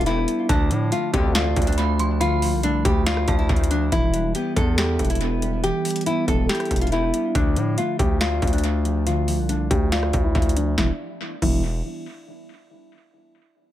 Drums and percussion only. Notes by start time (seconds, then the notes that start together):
0.01 closed hi-hat
0.06 closed hi-hat
0.28 closed hi-hat
0.49 kick, closed hi-hat
0.71 closed hi-hat
0.92 closed hi-hat
1.14 kick, closed hi-hat
1.35 snare, closed hi-hat
1.56 kick, closed hi-hat
1.62 closed hi-hat
1.67 closed hi-hat
1.73 closed hi-hat
1.78 closed hi-hat
1.99 closed hi-hat
2.21 closed hi-hat
2.42 open hi-hat
2.63 closed hi-hat
2.85 kick, closed hi-hat
3.06 snare, closed hi-hat
3.17 cross-stick
3.28 kick, closed hi-hat
3.49 kick, closed hi-hat
3.56 closed hi-hat
3.64 closed hi-hat
3.71 closed hi-hat
3.92 kick, closed hi-hat
4.14 closed hi-hat
4.35 closed hi-hat
4.56 kick, closed hi-hat
4.78 snare, closed hi-hat
4.99 kick, closed hi-hat
5.05 closed hi-hat
5.10 closed hi-hat
5.15 closed hi-hat
5.21 closed hi-hat
5.42 closed hi-hat
5.64 closed hi-hat
5.85 closed hi-hat, open hi-hat
5.90 closed hi-hat
5.96 closed hi-hat
6.01 closed hi-hat
6.06 closed hi-hat
6.28 kick, closed hi-hat
6.49 snare, closed hi-hat
6.55 closed hi-hat
6.60 cross-stick, closed hi-hat
6.65 closed hi-hat
6.71 kick, closed hi-hat
6.76 closed hi-hat
6.81 closed hi-hat
6.87 closed hi-hat
6.92 closed hi-hat
7.14 closed hi-hat
7.35 kick, closed hi-hat
7.56 closed hi-hat
7.78 closed hi-hat
7.99 kick, closed hi-hat
8.21 snare, closed hi-hat
8.42 kick, closed hi-hat
8.47 closed hi-hat
8.53 closed hi-hat
8.58 closed hi-hat
8.64 closed hi-hat
8.85 closed hi-hat
9.07 closed hi-hat
9.28 open hi-hat
9.49 closed hi-hat
9.71 kick, closed hi-hat
9.92 snare, closed hi-hat
10.03 cross-stick
10.13 kick, closed hi-hat
10.35 kick, closed hi-hat
10.42 closed hi-hat
10.49 closed hi-hat
10.57 closed hi-hat
10.78 kick, snare
11.42 kick, crash